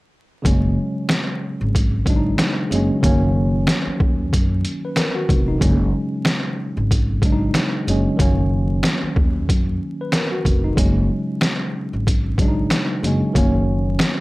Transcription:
0.42 F#1 C#3 F#3 G#3, kick, closed hi-hat
0.47 C#4
1.09 snare, closed hi-hat
1.61 G#1
1.75 kick, closed hi-hat
2.05 C#3 F#3 G#3, kick, closed hi-hat
2.10 D4
2.16 D#4
2.38 snare, closed hi-hat
2.70 F#1 C#3 F#3 G#3, closed hi-hat
2.75 C#4
3.01 F#1 D#3 F#3 A#3, kick, closed hi-hat
3.06 C#4
3.67 snare, closed hi-hat
3.87 muted upright bass stroke
4.00 D#2, kick
4.33 F#2, kick, closed hi-hat
4.65 closed hi-hat
4.85 B4
4.96 A#4, snare, closed hi-hat
5.15 F#4
5.29 F1, kick, closed hi-hat
5.48 D#4
5.58 F#1 C#3 F#3 G#3, kick, closed hi-hat
5.63 C#4
6.25 snare, closed hi-hat
6.77 G#1
6.91 kick, closed hi-hat
7.21 C#3 F#3 G#3, kick, closed hi-hat
7.26 D4
7.32 D#4
7.54 snare, closed hi-hat
7.87 F#1 C#3 F#3 G#3, closed hi-hat
7.91 C#4
8.17 F#1 D#3 F#3 A#3, kick, closed hi-hat
8.22 C#4
8.83 snare, closed hi-hat
9.03 muted upright bass stroke
9.16 D#2, kick
9.49 F#2, kick, closed hi-hat
10.01 B4
10.12 A#4, snare, closed hi-hat
10.32 F#4
10.45 F1, kick, closed hi-hat
10.64 D#4
10.74 F#1 C#3 F#3 G#3, kick, closed hi-hat
10.79 C#4
11.41 snare, closed hi-hat
11.93 G#1
12.07 kick, closed hi-hat
12.37 C#3 F#3 G#3, kick, closed hi-hat
12.42 D4
12.48 D#4
12.70 snare, closed hi-hat
13.02 F#1 C#3 F#3 G#3, closed hi-hat
13.07 C#4
13.33 F#1 D#3 F#3 A#3, kick, closed hi-hat
13.38 C#4
13.99 snare, closed hi-hat

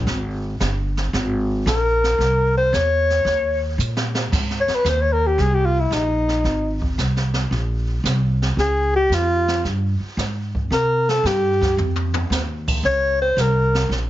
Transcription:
0.06 G#1, brush sweep, snare
0.60 G1, snare, hi-hat pedal
0.97 snare
1.13 G#1, brush sweep, snare
1.66 A#1 A#4, snare, hi-hat pedal
2.04 snare
2.18 C2, brush sweep, snare
2.57 C5
2.73 E2 C#5, snare, hi-hat pedal
3.10 snare
3.25 D#2, brush sweep, snare
3.78 A#2, hi-hat pedal
3.97 snare
4.15 snare
4.32 G#2, brush sweep, kick, snare, crash
4.50 snare
4.60 C#5
4.68 muted upright bass stroke, snare
4.75 B4
4.84 D#2, snare, hi-hat pedal
4.89 C5
5.01 C#5
5.13 A#4
5.27 G4
5.38 C2 G#4, brush sweep, snare
5.54 G4
5.65 F4
5.80 E4
5.91 A#1 D#4, snare, hi-hat pedal
6.29 snare
6.44 G#1, brush sweep, snare
6.82 kick
6.98 C2, snare, hi-hat pedal
7.16 snare
7.34 snare
7.35 snare
7.51 A#1, brush sweep, snare
8.04 C2, snare, hi-hat pedal
8.42 snare
8.57 C#2 G#4, brush sweep, snare
8.96 G4
9.09 F2, snare, hi-hat pedal
9.14 F4
9.48 snare
9.64 G2, brush sweep, snare
10.00 muted upright bass stroke
10.17 G#2, snare, hi-hat pedal
10.55 kick
10.70 C3 A#4, brush sweep, snare
11.09 A4, snare
11.24 G2 G4, snare, hi-hat pedal
11.62 kick, snare
11.77 F2, mid tom
11.96 floor tom
12.14 floor tom
12.30 D#2, snare, hi-hat pedal
12.68 kick, crash
12.83 C#2 C#5, brush sweep, snare
13.22 C5
13.37 C2, snare, hi-hat pedal
13.41 A#4
13.75 snare
13.89 A#1, brush sweep, snare

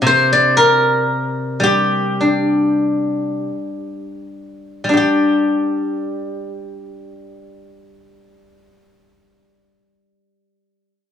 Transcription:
Already playing: G3 D4 G4
0.02 C3
0.07 C5
0.33 D5
0.57 A#4
1.60 G3 G4
2.21 D4
4.84 G3
4.89 D4
4.93 G4

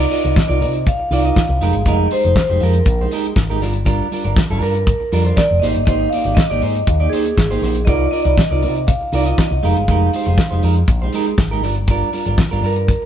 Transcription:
Already playing: D#5
0.10 D#4 F4 A#4 D5 D#5, open hi-hat
0.24 C2 D#4 F4 A#4 D5, closed hi-hat
0.36 muted clean electric guitar stroke, kick, snare, closed hi-hat
0.48 C2 D#4 F4 A#4 D5
0.61 C3 D#4 F4 A#4 D5, open hi-hat
0.75 muted clean electric guitar stroke, closed hi-hat
0.86 F5, muted clean electric guitar stroke, kick, closed hi-hat
0.99 muted clean electric guitar stroke
1.11 C2 D#4 F4 A#4 D5 F5, open hi-hat
1.25 D#4 F4 A#4 D#5, closed hi-hat
1.36 kick, snare, closed hi-hat
1.49 C2, muted clean electric guitar stroke
1.61 F1 G#3 D#4 G4 A#4, snare, open hi-hat
1.73 G1, muted clean electric guitar stroke, closed hi-hat
1.85 F1 G#3 D#4 G4 A#4 D#5, kick, closed hi-hat
2.10 G#3 D#4 G4 C5, open hi-hat
2.23 F1 G#3 D#4 G4 C5, closed hi-hat
2.36 muted clean electric guitar stroke, kick, snare, closed hi-hat
2.49 F1 G#3 D#4 G4 C5
2.60 F2 G#3 D#4 G4 A#4, open hi-hat
2.73 muted clean electric guitar stroke, closed hi-hat
2.85 A#1, muted clean electric guitar stroke, kick, closed hi-hat
3.01 G#3 D#4 G4 C5
3.11 G#3 D#4 G4 A#4, open hi-hat
3.24 muted clean electric guitar stroke, closed hi-hat
3.36 G#1, muted clean electric guitar stroke, kick, snare, closed hi-hat
3.50 G#3 D#4 G4 A#4
3.61 G1 G3 D4 F4 A#4, snare, open hi-hat
3.73 muted clean electric guitar stroke, closed hi-hat
3.85 G3 D4 F4 A#4, kick, closed hi-hat
4.12 G3 D4 F4 A#4, open hi-hat
4.24 G1 G3 D4 F4 A#4, closed hi-hat
4.36 muted clean electric guitar stroke, kick, snare, closed hi-hat
4.50 G1 G3 D4 F4 A#4
4.62 G2 G3 D4 F4 A#4, open hi-hat
4.75 muted clean electric guitar stroke, closed hi-hat
4.87 muted clean electric guitar stroke, kick, closed hi-hat
5.00 muted clean electric guitar stroke
5.12 F2 G3 D4 F4 A#4, open hi-hat
5.25 G3 D4 F4 C5, closed hi-hat
5.37 D5, kick, snare, closed hi-hat
5.51 F1, muted clean electric guitar stroke
5.60 G#1 A#3 D#4 D#5, snare, open hi-hat
5.64 G4 C5
5.75 G1, muted clean electric guitar stroke, closed hi-hat
5.85 G#1 A#3 D#4 G4 C5 D#5, kick, closed hi-hat
6.10 A#3 D#4 G4 F5, open hi-hat
6.14 D5
6.24 G#1 A#3 D#4 G4 D5, closed hi-hat
6.35 D#5, muted clean electric guitar stroke, kick, snare, closed hi-hat
6.50 G#1 A#3 D#4 G4 D5
6.61 G#2 A#3 D#4 G4 C5 D#5, open hi-hat
6.75 muted clean electric guitar stroke, closed hi-hat
6.87 D#2, muted clean electric guitar stroke, kick, closed hi-hat
7.00 A#3 D#4 G4 D5
7.10 A#3 D#4 G4 G#4, open hi-hat
7.14 C5
7.25 muted clean electric guitar stroke, closed hi-hat
7.36 G#1, muted clean electric guitar stroke, kick, snare, closed hi-hat
7.51 A#3 D#4 G4 C5
7.62 A#1 A#3 D#4 G4 C5, snare, open hi-hat
7.75 muted clean electric guitar stroke, closed hi-hat
7.85 C2 D#4 F4 A#4 D5 D#5, kick, closed hi-hat
8.11 D#4 F4 A#4 D5 D#5, open hi-hat
8.20 D5
8.25 C2 D#4 F4 A#4 D5 D#5, closed hi-hat
8.38 muted clean electric guitar stroke, kick, snare, closed hi-hat
8.51 C2 D#4 F4 A#4 D5
8.63 C3 D#4 F4 A#4 D5, open hi-hat
8.76 muted clean electric guitar stroke, closed hi-hat
8.87 F5, muted clean electric guitar stroke, kick, closed hi-hat
9.01 muted clean electric guitar stroke
9.12 C2 D#4 F4 A#4 D5, open hi-hat
9.25 D#4 F4 A#4 D#5, closed hi-hat
9.38 D#5, kick, snare, closed hi-hat
9.51 C2, muted clean electric guitar stroke
9.63 F1 G#3 D#4 G4 A#4 F5, open hi-hat
9.76 G1, muted clean electric guitar stroke, closed hi-hat
9.88 F1 G#3 D#4 G4 A#4, kick, closed hi-hat
10.13 G#3 D#4 G4 C5, open hi-hat
10.26 F1 G#3 D#4 G4 C5, closed hi-hat
10.38 muted clean electric guitar stroke, kick, snare, closed hi-hat
10.51 F1 G#3 D#4 G4 C5
10.63 F2 G#3 D#4 G4 A#4, open hi-hat
10.76 muted clean electric guitar stroke, closed hi-hat
10.88 A#1, muted clean electric guitar stroke, kick, closed hi-hat
11.02 G#3 D#4 G4 C5
11.12 G#3 D#4 G4 A#4, open hi-hat
11.26 muted clean electric guitar stroke, closed hi-hat
11.38 G#1, muted clean electric guitar stroke, kick, snare, closed hi-hat
11.51 G#3 D#4 G4 A#4
11.62 G1 G3 D4 F4 A#4, snare, open hi-hat
11.75 muted clean electric guitar stroke, closed hi-hat
11.88 G3 D4 F4 A#4, kick, closed hi-hat
12.13 G3 D4 F4 A#4, open hi-hat
12.26 G1 G3 D4 F4 A#4, closed hi-hat
12.38 kick, snare, closed hi-hat
12.51 G1 G3 D4 F4 A#4
12.62 G2 G3 D4 F4 A#4, open hi-hat
12.76 muted clean electric guitar stroke, closed hi-hat
12.88 muted clean electric guitar stroke, kick, closed hi-hat
13.02 muted clean electric guitar stroke

